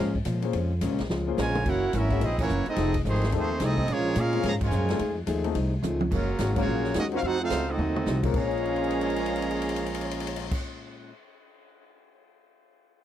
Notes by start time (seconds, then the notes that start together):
Already playing: G#2 A#2 G#3 C#4 F4 G#4 A#4 F5
0.00 F3 G#3 C#4
0.15 kick
0.25 A#2 F3 G#3 C#4, kick, hi-hat pedal, ride
0.42 A#3 C#4 F4 G#4 C5, ride
0.53 F2 A#2 F3 G#3 C#4, kick, ride
0.81 D#2 A#2 F3 G#3 A#3 C#4 F4 G#4 C5, kick, hi-hat pedal, ride
0.91 C#2
0.99 A#1, snare, ride
1.09 C#2 A#2 F3 G#3 C#4, snare
1.27 A#3 C#4 F4 G#4 C5
1.37 A#1 A#2 C#3 F3 G#3 C#4 F4 A#4 C#5 G#5, snare, hi-hat pedal
1.55 mid tom
1.65 F#1 F#2 E3 A#3 C#4 E4 F#4 A#4 C#5 F#5, kick, crash
1.93 G#1 F#2 E3 A#3 C#4 E4 F#4 A#4 E5, kick, hi-hat pedal, ride
2.10 A#3 C#4 E4 F#4 G#4, kick, ride
2.20 A#1 F#2 E3 A#3 C#4 D#4 E4, kick, ride
2.24 C4 G#4 D#5
2.39 E3 A#3 C#4 E4 F#4 C#5, kick, crash
2.48 F#1 F#2 E3 A#3 C#4, hi-hat pedal
2.66 A3 C4 D#4 G#4 A4 D#5, muted upright bass stroke, ride
2.75 F1 F3 A3 C4 D#4 F4 G#4, kick, snare, ride
2.94 kick, ride
3.05 G#1 D#3 F3 A3 C4 D#4 G#4 C5, hi-hat pedal
3.14 snare
3.21 snare, ride
3.32 D#2 D#3 F3 A3 C4 D#4 F4 G#4 A4, kick, ride
3.37 D#4 G#4 C5
3.60 C2 F3 A3 C4 D#4 G#4 A4 D#5, kick, snare, hi-hat pedal, ride
3.78 kick
3.88 A#1 A#2 F3 G#3 A#3 C#4 F4 G#4 C#5, ride
4.15 A#2 G#3 C#4 F4 A#4 F5, kick, hi-hat pedal, ride
4.19 G#4
4.33 A#3 C4 C#4 F4 G#4, ride
4.43 G#2 A#2 C#3 F3 G#3 A#3 C#4 F4 G#4 C#5 F5 A#5, kick, snare, ride
4.61 C#3 F3 G#3 F4 A#4 C#5 G#5, kick, crash
4.71 F#2 A#2 G#3 C#4 F4, hi-hat pedal
4.88 A3 C4 D#4 F4 A4, snare, ride
4.98 F2 F3 A3 D#4 G#4, kick, ride
5.26 D#2 F3 A3 D#4 G#4, kick, hi-hat pedal, ride
5.44 A3 C4 D#4 F4 G#4, ride
5.54 C2 F3 A3 D#4 G#4, kick, ride
5.82 C#2 F3 A3 D#4 G#4, hi-hat pedal, high tom
6.01 high tom
6.11 F#1 C#3 D#3 F#3 G#3 A#3 C#4 F4 F#4 A#4, kick, crash
6.39 G#1 D#3 G#3 C#4 F#4, kick, snare, hi-hat pedal, ride
6.56 F#3 A#3 C#4 F4 F#4 G#4 C#5 F5, kick, crash
6.67 A#1 D#3 G#3 C#4 F#4
6.84 snare
6.94 D#2 D#3 F#3 G#3 A#3 C#4 D#4 F#4 D#5, kick, snare, hi-hat pedal, ride
6.98 C#4 F#4 A#4
7.11 A#3 C4 C#4 D#4 F4 F#4 C5, ride
7.15 C#4 A#4 F5
7.22 F2 F3 A3 C4 D#4 F#4 F5, kick, ride
7.26 D#4 A4 C5 F#5
7.41 A3 C4 D#4 F4 A4 C5 F5
7.50 C#2 F3 A3 D#4, kick, snare, hi-hat pedal, ride
7.54 F#4
7.68 A3 C4 D#4 F#4 A4 D#5
7.78 D#2 F3 A3 D#4 F#4, mid tom
7.96 mid tom
8.06 C2 F3 A3 D#4 F#4, snare, hi-hat pedal
8.22 A#2 C4 C#4 F4 G#4 A#4, kick, crash
8.28 A#2 A#3
8.34 A#1 A#2 F3 G#3 C#4 G#4 C#5 F5 A#5, kick, crash
8.41 C#4 G#4
8.46 F4 C#5
8.51 crash
8.57 ride
8.62 D#5, crash
8.69 G#5
8.76 C6, ride
8.84 D#6, crash
8.90 ride
8.97 G#6
9.01 crash
9.07 C7, ride
9.16 D#7, crash
9.26 ride
9.36 crash
9.42 ride
9.51 crash
9.62 ride
9.69 crash
9.76 ride
9.86 crash
9.94 ride
10.01 crash
10.11 ride
10.20 crash
10.27 ride
10.36 crash
10.51 kick, crash